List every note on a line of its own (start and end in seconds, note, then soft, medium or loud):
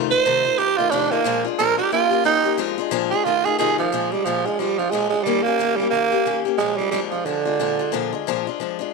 0.00 0.12 F2 medium
0.00 0.12 C3 medium
0.00 0.12 D#3 medium
0.00 0.12 A3 loud
0.00 0.11 D#4 loud
0.00 0.10 F4 loud
0.11 0.25 D#3 soft
0.11 0.25 A3 soft
0.11 0.26 D#4 medium
0.11 0.26 F4 medium
0.11 0.60 C5 loud
0.25 0.45 F2 medium
0.25 0.46 C3 medium
0.25 0.46 D#3 medium
0.25 0.45 A3 medium
0.25 0.45 D#4 medium
0.25 0.43 F4 medium
0.44 0.57 D#3 soft
0.44 0.58 A3 soft
0.44 0.59 D#4 medium
0.44 0.59 F4 medium
0.58 0.78 D#3 medium
0.58 0.79 A3 medium
0.58 0.78 D#4 medium
0.58 0.77 F4 medium
0.58 0.79 G4 loud
0.77 0.91 D#3 soft
0.77 0.92 A3 soft
0.77 0.92 D#4 medium
0.77 0.92 F4 loud
0.77 0.92 F4 medium
0.90 1.12 F2 medium
0.90 1.12 C3 medium
0.90 1.12 D#3 medium
0.90 1.12 A3 medium
0.90 1.12 D4 loud
0.90 1.11 D#4 medium
0.90 1.10 F4 medium
1.11 1.25 D#3 soft
1.11 1.26 A3 medium
1.11 1.44 A#3 loud
1.11 1.26 D#4 medium
1.11 1.25 F4 soft
1.24 1.45 A#2 medium
1.24 1.45 F3 medium
1.24 1.46 G#3 medium
1.24 1.45 D4 medium
1.24 1.43 F4 loud
1.44 1.59 G#3 soft
1.44 1.59 D4 soft
1.44 1.59 F4 medium
1.58 1.79 A#2 medium
1.58 1.79 F3 medium
1.58 1.79 G#3 medium
1.58 1.77 D4 medium
1.58 1.76 F4 medium
1.58 1.77 A#4 loud
1.77 1.92 G#3 soft
1.77 1.92 D4 soft
1.77 1.92 F4 medium
1.77 1.92 G4 loud
1.92 2.12 D#3 medium
1.92 2.12 A#3 medium
1.92 2.11 C#4 medium
1.92 2.25 F4 loud
1.92 2.09 G4 medium
2.10 2.23 A#3 soft
2.10 2.24 C#4 medium
2.10 2.25 G4 medium
2.24 2.45 D#3 medium
2.24 2.45 A#3 medium
2.24 2.44 C#4 medium
2.24 2.58 D#4 loud
2.24 2.43 G4 medium
2.44 2.58 A#3 medium
2.44 2.58 C#4 medium
2.44 2.58 G4 medium
2.57 2.78 A#2 medium
2.57 2.78 F3 medium
2.57 2.79 G#3 medium
2.57 2.78 D4 medium
2.57 2.77 F4 loud
2.78 2.91 G#3 medium
2.78 2.91 D4 medium
2.78 2.92 F4 medium
2.91 3.12 A#2 medium
2.91 3.12 F3 loud
2.91 3.12 G#3 loud
2.91 3.12 D4 loud
2.91 3.11 F4 loud
3.11 3.27 D4 medium
3.11 3.26 F4 medium
3.11 3.26 G#4 loud
3.15 3.26 G#3 soft
3.24 3.45 D#3 medium
3.24 3.46 A3 medium
3.24 3.45 D#4 medium
3.24 3.46 F4 loud
3.24 3.44 F4 medium
3.45 3.58 D#3 soft
3.45 3.59 A3 soft
3.45 3.59 D#4 medium
3.45 3.59 F4 medium
3.45 3.58 G#4 loud
3.58 3.79 F2 medium
3.58 3.79 C3 medium
3.58 3.79 D#3 medium
3.58 3.79 A3 medium
3.58 3.78 D#4 loud
3.58 3.77 F4 medium
3.58 3.78 G#4 loud
3.78 3.92 D#3 soft
3.78 4.13 F3 medium
3.78 3.93 A3 soft
3.78 3.93 D#4 medium
3.78 3.92 F4 medium
3.92 4.12 A#2 medium
3.92 4.12 F3 medium
3.92 4.13 G#3 medium
3.92 4.12 D4 medium
3.92 4.11 F4 medium
4.12 4.26 G3 medium
4.12 4.26 G#3 soft
4.12 4.26 D4 soft
4.12 4.26 F4 medium
4.25 4.45 A#2 medium
4.25 4.47 F3 medium
4.25 4.46 F3 medium
4.25 4.46 G#3 medium
4.25 4.46 D4 medium
4.25 4.44 F4 medium
4.46 4.61 G#3 medium
4.46 4.59 G#3 soft
4.46 4.59 D4 soft
4.46 4.59 F4 soft
4.59 4.79 F3 medium
4.59 4.80 G3 loud
4.59 4.79 G#3 medium
4.59 4.79 D4 medium
4.59 4.78 F4 medium
4.78 4.92 F3 medium
4.78 4.92 G#3 soft
4.78 4.93 D4 soft
4.78 4.93 F4 medium
4.91 5.12 A#2 medium
4.91 5.13 F3 medium
4.91 5.09 G#3 loud
4.91 5.13 G#3 medium
4.91 5.13 D4 medium
4.91 5.11 F4 medium
5.09 5.24 G#3 medium
5.09 5.26 F4 soft
5.14 5.26 G#3 soft
5.14 5.27 D4 soft
5.23 5.46 D#3 medium
5.23 5.44 G3 loud
5.23 5.46 A#3 medium
5.27 5.46 C#4 medium
5.27 5.44 G4 medium
5.43 5.78 A#3 loud
5.43 5.59 G4 medium
5.47 5.59 A#3 soft
5.47 5.59 C#4 medium
5.59 5.79 D#3 medium
5.59 5.79 A#3 medium
5.59 5.80 C#4 medium
5.59 5.78 G4 medium
5.76 5.89 G3 loud
5.76 5.93 G4 soft
5.81 5.92 A#3 soft
5.81 5.93 C#4 soft
5.90 6.12 D#3 medium
5.90 6.41 A#3 loud
5.90 6.13 A#3 medium
5.94 6.12 C#4 medium
5.94 6.11 G4 medium
6.12 6.25 A#3 soft
6.12 6.26 C#4 medium
6.12 6.26 G4 medium
6.26 6.46 D#3 medium
6.26 6.46 A#3 medium
6.26 6.46 C#4 medium
6.26 6.44 G4 medium
6.45 6.59 A#3 medium
6.45 6.60 C#4 medium
6.45 6.59 G4 medium
6.58 6.79 A#2 medium
6.58 6.79 F3 medium
6.58 6.78 G#3 loud
6.58 6.79 G#3 medium
6.58 6.79 D4 medium
6.58 6.77 F4 medium
6.77 6.90 G3 loud
6.77 6.93 D4 soft
6.77 6.93 F4 medium
6.81 6.92 G#3 soft
6.91 7.12 A#2 medium
6.91 7.12 F3 medium
6.91 7.00 G3 medium
6.91 7.13 G#3 medium
6.91 7.12 D4 medium
6.91 7.10 F4 loud
7.10 7.27 F3 medium
7.10 7.26 D4 soft
7.10 7.26 F4 soft
7.14 7.25 G#3 soft
7.25 8.26 D3 loud
7.25 7.46 F3 medium
7.25 7.46 G#3 medium
7.25 7.46 D4 medium
7.25 7.44 F4 medium
7.45 7.59 G#3 soft
7.45 7.59 D4 soft
7.45 7.59 F4 medium
7.59 7.79 A#2 medium
7.59 7.79 F3 medium
7.59 7.80 G#3 medium
7.59 7.79 D4 medium
7.59 7.78 F4 loud
7.79 7.92 G#3 medium
7.79 7.92 D4 medium
7.79 7.93 F4 medium
7.92 8.12 A#2 medium
7.92 8.12 F3 medium
7.92 8.13 G#3 medium
7.92 8.13 D4 medium
7.92 8.11 F4 medium
8.13 8.27 G#3 medium
8.13 8.27 D4 medium
8.13 8.26 F4 medium
8.27 8.46 A#2 medium
8.27 8.47 F3 medium
8.27 8.47 G#3 medium
8.27 8.47 D4 loud
8.27 8.46 F4 loud
8.47 8.60 G#3 soft
8.47 8.60 D4 soft
8.47 8.60 F4 medium
8.60 8.79 F3 medium
8.60 8.80 G#3 medium
8.60 8.80 D4 medium
8.60 8.78 F4 medium
8.79 8.93 G#3 soft
8.79 8.94 D4 medium
8.79 8.93 F4 medium